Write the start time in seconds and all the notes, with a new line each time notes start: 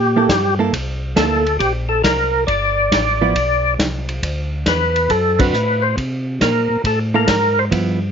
Already playing: A#2 G4
0.16 A#3 E4 A4
0.29 G2, kick, snare, hi-hat pedal, ride
0.59 A#3 E4 A4
0.73 C2, kick, ride
1.16 D2 A#3 E4 A4, kick, snare, hi-hat pedal, ride
1.46 ride
1.59 A#1 G4, kick, ride
1.89 A4
2.04 C2 A#4, kick, snare, hi-hat pedal, ride
2.47 G1 D5, kick, ride
2.92 A1, kick, snare, hi-hat pedal, ride
3.21 F3 B3 E4
3.35 B1, kick, ride
3.79 C2, kick, snare, hi-hat pedal, ride
4.09 ride
4.23 D2, kick, ride
4.66 E2 B4, kick, snare, hi-hat pedal, ride
4.96 ride
5.09 F#2 A4, kick, ride
5.39 D3 C4 F#4 B4, kick, ride
5.53 A2, hi-hat pedal
5.82 C5
5.97 C3, kick, ride
6.41 A#2 A#4, kick, snare, hi-hat pedal, ride
6.70 A#2
6.84 A2 A4, kick, ride
7.14 A#3 E4 A4 A#4
7.28 G#2, kick, snare, hi-hat pedal, ride
7.59 C5
7.71 G2 F3 B3 E4, kick, ride